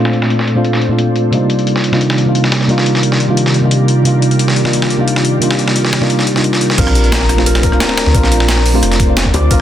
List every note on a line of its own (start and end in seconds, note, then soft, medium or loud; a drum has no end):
0.00 0.55 A#2 medium
0.00 0.56 A3 medium
0.00 0.56 C4 medium
0.00 0.57 D4 medium
0.00 0.57 F4 loud
0.00 1.29 F4 medium
0.00 1.29 A4 medium
0.00 1.29 C5 medium
0.00 1.28 D5 medium
0.05 snare soft
0.13 closed hi-hat medium
0.22 snare medium
0.30 closed hi-hat medium
0.39 snare soft
0.47 closed hi-hat medium
0.55 0.62 A#2 medium
0.55 0.63 A3 medium
0.55 0.63 C4 medium
0.55 0.63 D4 medium
0.55 0.63 F4 medium
0.65 closed hi-hat medium
0.73 snare soft
0.81 closed hi-hat medium
0.88 1.30 A#2 medium
0.88 1.30 A3 medium
0.88 1.31 C4 medium
0.88 1.31 D4 medium
0.88 1.32 F4 medium
0.99 closed hi-hat medium
1.16 closed hi-hat medium
1.31 1.90 C3 medium
1.31 6.74 C3 medium
1.31 6.74 D#3 medium
1.31 1.90 G3 medium
1.31 1.90 A#3 medium
1.31 1.91 D4 medium
1.31 1.91 D#4 medium
1.31 6.74 F4 medium
1.31 1.91 F4 medium
1.31 6.74 G4 medium
1.31 6.74 A#4 medium
1.31 6.74 D5 medium
1.31 closed hi-hat medium
1.50 closed hi-hat medium
1.59 closed hi-hat soft
1.67 closed hi-hat medium
1.76 snare soft
1.84 closed hi-hat medium
1.92 1.99 C3 medium
1.92 1.99 G3 medium
1.92 1.99 A#3 medium
1.92 2.00 D4 medium
1.92 2.00 D#4 medium
1.92 2.00 F4 medium
1.92 snare soft
2.01 closed hi-hat medium
2.10 snare soft
2.18 closed hi-hat medium
2.25 2.66 C3 medium
2.25 2.67 G3 medium
2.25 2.67 A#3 medium
2.25 2.67 D4 medium
2.25 2.68 D#4 medium
2.25 2.68 F4 medium
2.35 closed hi-hat medium
2.44 snare medium
2.52 snare loud
2.52 closed hi-hat medium
2.61 snare soft
2.68 3.26 C3 medium
2.68 3.26 G3 medium
2.68 3.27 A#3 medium
2.68 3.27 D4 medium
2.68 3.28 D#4 medium
2.68 3.28 F4 loud
2.68 closed hi-hat medium
2.78 snare soft
2.86 closed hi-hat medium
2.95 snare soft
3.03 closed hi-hat medium
3.12 snare soft
3.20 closed hi-hat medium
3.28 3.35 C3 medium
3.28 3.36 G3 medium
3.28 3.36 A#3 medium
3.28 3.36 D4 medium
3.28 3.36 D#4 medium
3.28 3.36 F4 medium
3.37 closed hi-hat medium
3.46 snare soft
3.54 closed hi-hat medium
3.62 4.02 C3 medium
3.62 4.03 G3 medium
3.62 4.03 A#3 medium
3.62 4.04 D4 medium
3.62 4.04 D#4 medium
3.62 4.05 F4 medium
3.71 closed hi-hat medium
3.88 closed hi-hat medium
4.04 4.62 C3 medium
4.04 4.63 G3 medium
4.04 4.63 A#3 medium
4.04 4.63 D4 medium
4.04 4.64 D#4 medium
4.04 4.64 F4 loud
4.04 closed hi-hat medium
4.22 closed hi-hat medium
4.31 closed hi-hat soft
4.39 closed hi-hat medium
4.48 snare soft
4.56 closed hi-hat medium
4.64 4.72 C3 medium
4.64 4.72 G3 medium
4.64 4.72 A#3 medium
4.64 4.72 D4 medium
4.64 4.72 D#4 medium
4.64 4.72 F4 medium
4.64 snare soft
4.73 closed hi-hat medium
4.82 snare soft
4.90 closed hi-hat medium
4.97 5.39 C3 medium
4.97 5.39 G3 medium
4.97 5.39 A#3 medium
4.97 5.40 D4 medium
4.97 5.40 D#4 medium
4.97 5.41 F4 medium
5.08 closed hi-hat medium
5.16 snare medium
5.25 closed hi-hat medium
5.40 5.99 C3 medium
5.40 5.99 G3 medium
5.40 5.99 A#3 medium
5.40 6.00 D4 medium
5.40 6.00 D#4 medium
5.40 6.00 F4 loud
5.40 closed hi-hat medium
5.51 snare soft
5.59 closed hi-hat medium
5.68 snare medium
5.76 closed hi-hat medium
5.85 snare soft
5.93 snare loud
5.93 closed hi-hat medium
6.01 6.08 C3 medium
6.01 6.08 G3 medium
6.01 6.08 A#3 medium
6.01 6.08 D4 medium
6.01 6.09 D#4 medium
6.01 6.09 F4 medium
6.01 snare soft
6.10 closed hi-hat medium
6.19 snare soft
6.27 closed hi-hat medium
6.34 6.75 C3 medium
6.34 6.76 G3 medium
6.34 6.76 A#3 medium
6.34 6.76 D4 medium
6.34 6.77 D#4 medium
6.34 6.77 F4 medium
6.34 snare soft
6.44 closed hi-hat medium
6.53 snare soft
6.61 closed hi-hat medium
6.70 snare soft
6.78 7.71 A#1 loud
6.78 7.36 C4 medium
6.78 7.36 D4 medium
6.78 9.61 F4 medium
6.78 7.37 F4 loud
6.78 7.46 A#4 medium
6.78 9.61 C5 medium
6.78 9.61 D5 loud
6.78 kick loud
6.78 closed hi-hat loud
6.78 crash loud
6.78 sub drop medium
6.87 cross-stick medium
6.95 closed hi-hat medium
7.04 closed hi-hat soft
7.12 7.80 A#5 medium
7.12 snare loud
7.12 closed hi-hat loud
7.12 closed hi-hat medium
7.21 snare soft
7.29 cross-stick medium
7.29 closed hi-hat medium
7.37 7.44 A3 medium
7.37 7.45 C4 medium
7.37 7.45 D4 medium
7.37 7.45 F4 medium
7.37 snare soft
7.46 7.63 A#4 medium
7.46 closed hi-hat medium
7.46 closed hi-hat loud
7.55 cross-stick soft
7.55 snare medium
7.55 closed hi-hat soft
7.63 8.14 A#4 loud
7.63 kick loud
7.63 closed hi-hat medium
7.72 8.12 C4 medium
7.72 8.13 D4 medium
7.72 8.14 F4 medium
7.72 cross-stick soft
7.80 8.48 A#5 loud
7.80 snare loud
7.80 closed hi-hat medium
7.80 closed hi-hat loud
7.89 snare medium
7.97 snare loud
7.97 closed hi-hat medium
8.06 8.14 D2 loud
8.06 snare soft
8.14 8.82 A#1 loud
8.14 8.72 C4 medium
8.14 8.73 D4 medium
8.14 8.73 F4 loud
8.14 9.50 A#4 medium
8.14 kick loud
8.14 closed hi-hat medium
8.23 snare soft
8.32 closed hi-hat medium
8.40 snare soft
8.48 9.61 A#5 medium
8.48 snare loud
8.48 closed hi-hat loud
8.48 closed hi-hat medium
8.57 snare soft
8.66 closed hi-hat medium
8.66 open hi-hat medium
8.74 8.81 A3 medium
8.74 8.81 C4 medium
8.74 8.81 D4 medium
8.74 8.82 F4 loud
8.74 high bongo soft
8.83 9.32 F1 loud
8.83 cross-stick soft
8.83 closed hi-hat medium
8.92 snare soft
8.92 closed hi-hat soft
9.00 kick loud
9.00 closed hi-hat medium
9.07 9.48 A3 medium
9.07 9.48 C4 medium
9.07 9.49 D4 medium
9.07 9.50 F4 loud
9.17 snare loud
9.17 closed hi-hat medium
9.17 closed hi-hat loud
9.26 kick medium
9.34 9.49 D2 loud
9.34 9.61 D5 medium
9.34 closed hi-hat medium
9.34 high bongo medium
9.50 9.61 A#1 medium
9.50 9.61 C4 medium
9.50 9.61 D4 medium
9.50 9.61 F4 loud
9.50 9.61 A#4 medium
9.50 kick loud
9.50 closed hi-hat medium